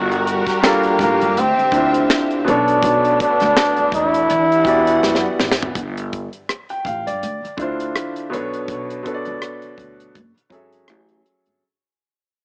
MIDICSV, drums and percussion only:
0, 0, Header, 1, 2, 480
1, 0, Start_track
1, 0, Tempo, 731707
1, 1849, Time_signature, 4, 2, 24, 8
1, 8161, End_track
2, 0, Start_track
2, 0, Title_t, "Drums"
2, 76, Note_on_c, 9, 42, 36
2, 142, Note_off_c, 9, 42, 0
2, 179, Note_on_c, 9, 42, 67
2, 245, Note_off_c, 9, 42, 0
2, 306, Note_on_c, 9, 36, 81
2, 309, Note_on_c, 9, 42, 45
2, 317, Note_on_c, 9, 38, 33
2, 372, Note_off_c, 9, 36, 0
2, 375, Note_off_c, 9, 42, 0
2, 382, Note_off_c, 9, 38, 0
2, 418, Note_on_c, 9, 38, 114
2, 422, Note_on_c, 9, 26, 86
2, 424, Note_on_c, 9, 42, 73
2, 483, Note_off_c, 9, 38, 0
2, 487, Note_off_c, 9, 26, 0
2, 490, Note_off_c, 9, 42, 0
2, 548, Note_on_c, 9, 42, 37
2, 613, Note_off_c, 9, 42, 0
2, 651, Note_on_c, 9, 36, 83
2, 654, Note_on_c, 9, 38, 34
2, 660, Note_on_c, 9, 42, 67
2, 716, Note_off_c, 9, 36, 0
2, 720, Note_off_c, 9, 38, 0
2, 726, Note_off_c, 9, 42, 0
2, 797, Note_on_c, 9, 42, 55
2, 862, Note_off_c, 9, 42, 0
2, 900, Note_on_c, 9, 42, 82
2, 966, Note_off_c, 9, 42, 0
2, 1045, Note_on_c, 9, 42, 34
2, 1110, Note_off_c, 9, 42, 0
2, 1128, Note_on_c, 9, 36, 95
2, 1140, Note_on_c, 9, 42, 63
2, 1194, Note_off_c, 9, 36, 0
2, 1205, Note_off_c, 9, 42, 0
2, 1275, Note_on_c, 9, 42, 55
2, 1340, Note_off_c, 9, 42, 0
2, 1377, Note_on_c, 9, 38, 117
2, 1378, Note_on_c, 9, 42, 75
2, 1381, Note_on_c, 9, 26, 93
2, 1443, Note_off_c, 9, 38, 0
2, 1443, Note_off_c, 9, 42, 0
2, 1447, Note_off_c, 9, 26, 0
2, 1513, Note_on_c, 9, 42, 33
2, 1578, Note_off_c, 9, 42, 0
2, 1625, Note_on_c, 9, 42, 67
2, 1690, Note_off_c, 9, 42, 0
2, 1757, Note_on_c, 9, 42, 45
2, 1822, Note_off_c, 9, 42, 0
2, 1853, Note_on_c, 9, 36, 115
2, 1856, Note_on_c, 9, 42, 91
2, 1919, Note_off_c, 9, 36, 0
2, 1922, Note_off_c, 9, 42, 0
2, 1998, Note_on_c, 9, 42, 36
2, 2064, Note_off_c, 9, 42, 0
2, 2100, Note_on_c, 9, 36, 84
2, 2100, Note_on_c, 9, 42, 67
2, 2166, Note_off_c, 9, 36, 0
2, 2166, Note_off_c, 9, 42, 0
2, 2230, Note_on_c, 9, 42, 45
2, 2238, Note_on_c, 9, 38, 32
2, 2296, Note_off_c, 9, 42, 0
2, 2303, Note_off_c, 9, 38, 0
2, 2339, Note_on_c, 9, 38, 112
2, 2342, Note_on_c, 9, 26, 93
2, 2345, Note_on_c, 9, 42, 67
2, 2404, Note_off_c, 9, 38, 0
2, 2408, Note_off_c, 9, 26, 0
2, 2410, Note_off_c, 9, 42, 0
2, 2469, Note_on_c, 9, 42, 35
2, 2535, Note_off_c, 9, 42, 0
2, 2571, Note_on_c, 9, 36, 82
2, 2582, Note_on_c, 9, 42, 66
2, 2637, Note_off_c, 9, 36, 0
2, 2647, Note_off_c, 9, 42, 0
2, 2717, Note_on_c, 9, 42, 58
2, 2783, Note_off_c, 9, 42, 0
2, 2819, Note_on_c, 9, 42, 83
2, 2885, Note_off_c, 9, 42, 0
2, 2964, Note_on_c, 9, 42, 38
2, 3030, Note_off_c, 9, 42, 0
2, 3049, Note_on_c, 9, 36, 88
2, 3061, Note_on_c, 9, 42, 63
2, 3114, Note_off_c, 9, 36, 0
2, 3126, Note_off_c, 9, 42, 0
2, 3195, Note_on_c, 9, 42, 56
2, 3261, Note_off_c, 9, 42, 0
2, 3300, Note_on_c, 9, 38, 61
2, 3366, Note_off_c, 9, 38, 0
2, 3379, Note_on_c, 9, 38, 55
2, 3444, Note_off_c, 9, 38, 0
2, 3539, Note_on_c, 9, 38, 78
2, 3605, Note_off_c, 9, 38, 0
2, 3618, Note_on_c, 9, 38, 106
2, 3684, Note_off_c, 9, 38, 0
2, 3690, Note_on_c, 9, 43, 90
2, 3756, Note_off_c, 9, 43, 0
2, 3775, Note_on_c, 9, 36, 108
2, 3779, Note_on_c, 9, 42, 76
2, 3840, Note_off_c, 9, 36, 0
2, 3844, Note_off_c, 9, 42, 0
2, 3919, Note_on_c, 9, 42, 51
2, 3985, Note_off_c, 9, 42, 0
2, 4020, Note_on_c, 9, 42, 56
2, 4022, Note_on_c, 9, 36, 75
2, 4086, Note_off_c, 9, 42, 0
2, 4087, Note_off_c, 9, 36, 0
2, 4152, Note_on_c, 9, 42, 38
2, 4217, Note_off_c, 9, 42, 0
2, 4259, Note_on_c, 9, 37, 93
2, 4266, Note_on_c, 9, 42, 58
2, 4325, Note_off_c, 9, 37, 0
2, 4331, Note_off_c, 9, 42, 0
2, 4391, Note_on_c, 9, 42, 41
2, 4456, Note_off_c, 9, 42, 0
2, 4494, Note_on_c, 9, 36, 66
2, 4504, Note_on_c, 9, 42, 59
2, 4559, Note_off_c, 9, 36, 0
2, 4570, Note_off_c, 9, 42, 0
2, 4640, Note_on_c, 9, 42, 54
2, 4706, Note_off_c, 9, 42, 0
2, 4742, Note_on_c, 9, 42, 73
2, 4808, Note_off_c, 9, 42, 0
2, 4886, Note_on_c, 9, 42, 40
2, 4952, Note_off_c, 9, 42, 0
2, 4971, Note_on_c, 9, 36, 77
2, 4983, Note_on_c, 9, 42, 53
2, 5036, Note_off_c, 9, 36, 0
2, 5048, Note_off_c, 9, 42, 0
2, 5117, Note_on_c, 9, 42, 47
2, 5183, Note_off_c, 9, 42, 0
2, 5220, Note_on_c, 9, 37, 106
2, 5220, Note_on_c, 9, 42, 66
2, 5285, Note_off_c, 9, 37, 0
2, 5286, Note_off_c, 9, 42, 0
2, 5354, Note_on_c, 9, 42, 39
2, 5420, Note_off_c, 9, 42, 0
2, 5467, Note_on_c, 9, 42, 60
2, 5533, Note_off_c, 9, 42, 0
2, 5599, Note_on_c, 9, 42, 40
2, 5664, Note_off_c, 9, 42, 0
2, 5695, Note_on_c, 9, 36, 101
2, 5700, Note_on_c, 9, 42, 70
2, 5761, Note_off_c, 9, 36, 0
2, 5765, Note_off_c, 9, 42, 0
2, 5840, Note_on_c, 9, 42, 46
2, 5906, Note_off_c, 9, 42, 0
2, 5941, Note_on_c, 9, 42, 59
2, 5942, Note_on_c, 9, 36, 65
2, 6007, Note_off_c, 9, 36, 0
2, 6007, Note_off_c, 9, 42, 0
2, 6069, Note_on_c, 9, 42, 37
2, 6135, Note_off_c, 9, 42, 0
2, 6178, Note_on_c, 9, 37, 94
2, 6184, Note_on_c, 9, 42, 60
2, 6243, Note_off_c, 9, 37, 0
2, 6250, Note_off_c, 9, 42, 0
2, 6310, Note_on_c, 9, 42, 39
2, 6376, Note_off_c, 9, 42, 0
2, 6413, Note_on_c, 9, 36, 62
2, 6423, Note_on_c, 9, 42, 58
2, 6479, Note_off_c, 9, 36, 0
2, 6488, Note_off_c, 9, 42, 0
2, 6559, Note_on_c, 9, 42, 45
2, 6625, Note_off_c, 9, 42, 0
2, 6659, Note_on_c, 9, 36, 78
2, 6659, Note_on_c, 9, 42, 70
2, 6724, Note_off_c, 9, 42, 0
2, 6725, Note_off_c, 9, 36, 0
2, 6806, Note_on_c, 9, 42, 39
2, 6872, Note_off_c, 9, 42, 0
2, 6890, Note_on_c, 9, 36, 75
2, 6901, Note_on_c, 9, 42, 54
2, 6955, Note_off_c, 9, 36, 0
2, 6967, Note_off_c, 9, 42, 0
2, 7035, Note_on_c, 9, 42, 45
2, 7100, Note_off_c, 9, 42, 0
2, 7136, Note_on_c, 9, 37, 96
2, 7136, Note_on_c, 9, 42, 61
2, 7202, Note_off_c, 9, 37, 0
2, 7202, Note_off_c, 9, 42, 0
2, 7272, Note_on_c, 9, 42, 34
2, 7337, Note_off_c, 9, 42, 0
2, 7385, Note_on_c, 9, 42, 53
2, 7450, Note_off_c, 9, 42, 0
2, 7516, Note_on_c, 9, 42, 37
2, 7582, Note_off_c, 9, 42, 0
2, 8161, End_track
0, 0, End_of_file